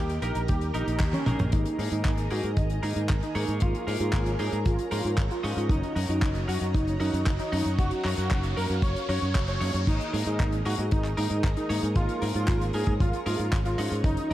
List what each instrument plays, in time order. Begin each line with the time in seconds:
Already playing: fingered electric bass D#2, clean electric guitar A#3 D#4 G4 A#4, analog synth lead G4, string machine G4 A#4 D#5 A#5
0.10 closed hi-hat
0.22 fingered electric bass A#1, clean electric guitar A#3 D#4 G4 A#4, analog synth lead A#4, closed hi-hat
0.35 fingered electric bass A#1, closed hi-hat
0.48 fingered electric bass D#2, analog synth lead G4, kick, closed hi-hat
0.61 closed hi-hat
0.74 fingered electric bass A#1, clean electric guitar A#3 D#4 G4 A#4, analog synth lead D#4, closed hi-hat
0.87 fingered electric bass A#1, closed hi-hat
1.00 fingered electric bass D#2, kick, clap, closed hi-hat
1.13 analog synth lead C#4, closed hi-hat, high tom
1.26 fingered electric bass A#1, clean electric guitar A#3 D#4 G#4 A#4, closed hi-hat, mid tom
1.39 fingered electric bass A#1, closed hi-hat, mid tom
1.52 fingered electric bass G#1, analog synth lead D#4, string machine G#4 A#4 D#5 A#5, kick, closed hi-hat, riser
1.65 closed hi-hat
1.78 fingered electric bass G#2, clean electric guitar A#3 D#4 G#4 A#4, open hi-hat
1.91 fingered electric bass G#2, analog synth lead D#4, closed hi-hat
2.05 fingered electric bass G#1, kick, clap, closed hi-hat
2.18 closed hi-hat
2.30 fingered electric bass G#2, clean electric guitar A#3 D#4 G#4 A#4, analog synth lead F#4, open hi-hat
2.43 fingered electric bass G#2, closed hi-hat
2.57 fingered electric bass G#1, analog synth lead D#4, kick, closed hi-hat
2.70 closed hi-hat
2.83 fingered electric bass G#2, clean electric guitar A#3 D#4 G#4 A#4, analog synth lead D#4, open hi-hat
2.96 fingered electric bass G#2, closed hi-hat
3.09 fingered electric bass G#1, kick, clap, closed hi-hat
3.23 analog synth lead D#4, closed hi-hat
3.35 fingered electric bass G#2, clean electric guitar A#3 D#4 G#4 C#5, open hi-hat
3.48 fingered electric bass G#2, closed hi-hat
3.60 fingered electric bass G#1, analog synth lead F4, string machine C#5, kick, closed hi-hat
3.75 closed hi-hat
3.87 fingered electric bass G#2, clean electric guitar A#3 D#4 G#4 A#4, open hi-hat
4.00 fingered electric bass G#2, analog synth lead F4, closed hi-hat
4.13 fingered electric bass G#1, kick, clap, closed hi-hat
4.26 closed hi-hat
4.39 fingered electric bass G#2, clean electric guitar A#3 D#4 G#4 A#4, analog synth lead G#4, open hi-hat
4.53 fingered electric bass G#2, closed hi-hat
4.66 fingered electric bass G#1, analog synth lead F4, kick, closed hi-hat
4.79 closed hi-hat
4.91 fingered electric bass G#2, clean electric guitar A#3 D#4 G#4 A#4, analog synth lead F4, open hi-hat
5.05 fingered electric bass G#2, closed hi-hat
5.18 fingered electric bass G#1, kick, clap, closed hi-hat
5.31 analog synth lead F4, closed hi-hat
5.43 fingered electric bass G#2, clean electric guitar C#4 D#4 F#4 D#5, open hi-hat
5.57 fingered electric bass G#2, closed hi-hat
5.69 fingered electric bass F#1, analog synth lead D#4, string machine F#4 D#5, kick, closed hi-hat
5.83 closed hi-hat
5.96 fingered electric bass F#2, clean electric guitar C#4 D#4 F#4 A#4, open hi-hat
6.09 fingered electric bass F#2, analog synth lead D#4, closed hi-hat
6.22 fingered electric bass F#1, kick, clap, closed hi-hat
6.35 closed hi-hat
6.48 fingered electric bass F#2, clean electric guitar C#4 D#4 F#4 A#4, analog synth lead F#4, open hi-hat
6.61 fingered electric bass F#2, closed hi-hat
6.74 fingered electric bass F#1, analog synth lead D#4, kick, closed hi-hat
6.87 closed hi-hat
7.00 fingered electric bass F#2, clean electric guitar C#4 D#4 F#4 A#4, analog synth lead D#4, open hi-hat
7.13 fingered electric bass F#2, closed hi-hat
7.26 fingered electric bass F#1, kick, clap, closed hi-hat
7.39 analog synth lead D#4, closed hi-hat
7.52 fingered electric bass F#2, clean electric guitar C#4 D#4 F#4 D#5, open hi-hat
7.66 fingered electric bass F#2, closed hi-hat
7.79 fingered electric bass F#1, analog synth lead F#4, string machine F5, kick, closed hi-hat
7.91 closed hi-hat
8.04 fingered electric bass F#2, clean electric guitar C#4 D#4 F#4 A#4, clap, open hi-hat
8.18 fingered electric bass F#2, analog synth lead F#4, closed hi-hat
8.30 fingered electric bass F#1, kick, clap, closed hi-hat
8.43 closed hi-hat
8.56 fingered electric bass F#2, clean electric guitar C#4 D#4 F#4 A#4, analog synth lead A#4, open hi-hat
8.70 fingered electric bass F#2, closed hi-hat
8.82 fingered electric bass F#1, analog synth lead C#5, kick, closed hi-hat
8.96 closed hi-hat
9.09 fingered electric bass F#2, clean electric guitar C#4 D#4 F#4 A#4, analog synth lead C#5, open hi-hat
9.22 fingered electric bass F#2, closed hi-hat
9.35 fingered electric bass F#1, kick, clap, closed hi-hat
9.48 analog synth lead C#5, closed hi-hat
9.61 fingered electric bass F#2, clean electric guitar A#3 D#4 G#4 C#5, open hi-hat
9.74 fingered electric bass F#2, closed hi-hat
9.87 fingered electric bass G#1, analog synth lead D#4, string machine G#4 A#4 D#5 A#5, kick, closed hi-hat, crash
10.01 closed hi-hat
10.13 fingered electric bass G#2, clean electric guitar A#3 D#4 G#4 A#4, open hi-hat
10.25 fingered electric bass G#2, analog synth lead D#4, closed hi-hat
10.39 fingered electric bass G#1, kick, clap, closed hi-hat
10.52 closed hi-hat
10.65 fingered electric bass G#2, clean electric guitar A#3 D#4 G#4 A#4, analog synth lead F#4, open hi-hat
10.78 fingered electric bass G#2, closed hi-hat
10.91 fingered electric bass G#1, analog synth lead D#4, kick, closed hi-hat
11.05 clap, closed hi-hat
11.17 fingered electric bass G#2, clean electric guitar A#3 D#4 G#4 A#4, analog synth lead D#4, open hi-hat
11.30 fingered electric bass G#2, closed hi-hat
11.44 fingered electric bass G#1, kick, clap, closed hi-hat
11.57 analog synth lead D#4, closed hi-hat
11.69 fingered electric bass G#2, clean electric guitar A#3 D#4 G#4 C#5, open hi-hat
11.83 fingered electric bass G#2, closed hi-hat
11.96 fingered electric bass G#1, analog synth lead F4, string machine C#5, kick, closed hi-hat
12.09 closed hi-hat
12.22 fingered electric bass G#2, clean electric guitar A#3 D#4 G#4 A#4, open hi-hat
12.35 fingered electric bass G#2, analog synth lead F4, closed hi-hat
12.48 fingered electric bass G#1, kick, clap, closed hi-hat
12.61 closed hi-hat
12.73 fingered electric bass G#2, clean electric guitar A#3 D#4 G#4 A#4, analog synth lead G#4, open hi-hat
12.87 fingered electric bass G#2, kick, closed hi-hat
13.00 fingered electric bass G#1, analog synth lead F4, kick, closed hi-hat
13.13 closed hi-hat
13.26 fingered electric bass G#2, clean electric guitar A#3 D#4 G#4 A#4, analog synth lead F4, open hi-hat
13.39 fingered electric bass G#2, closed hi-hat
13.53 fingered electric bass G#1, kick, clap, closed hi-hat
13.65 analog synth lead F4, closed hi-hat
13.78 fingered electric bass G#2, clean electric guitar C#4 D#4 F#4 D#5, open hi-hat
13.92 fingered electric bass G#2, closed hi-hat
14.04 fingered electric bass F#1, analog synth lead D#4, string machine F#4 D#5 A#5, kick, closed hi-hat
14.17 closed hi-hat
14.30 clean electric guitar A#4